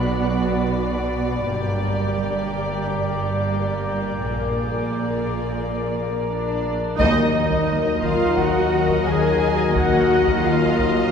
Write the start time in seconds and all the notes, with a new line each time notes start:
Already playing: B1 B2 B3 F#4 D5 B5 F#6
0.08 B2
0.44 B2
0.78 B3
1.13 B3
1.47 G1 G2 A#3 G4 A#5 D6 G6
1.82 G2
2.15 G2
2.50 G2
2.85 G2
3.21 G2
3.55 G3
3.89 G3
4.22 A#1 A#2 G#4 D5
4.58 A#2
4.93 A#2
5.27 A#2
5.61 A#2
5.96 A#2
6.30 A#3 D4 D5
6.64 A#3
6.98 D#2 D#3 F#3 D#4 A#4 D#5 A#5 D#6, taiko
7.34 D#4
7.51 taiko
7.68 D#3 F6
8.02 D#3 F4 F5, taiko
8.37 D#3 F#4 F#5 A#6, taiko
8.72 D#3
8.89 taiko
9.06 D#3 G#4 G#5
9.41 D#3
9.75 D#2 D#3 F#3 D#4 F#4 A#4 D#5 F#5 A#5, taiko
10.11 D#4
10.28 taiko
10.45 D#3 F4 F5
10.79 D#3, taiko
11.02 E6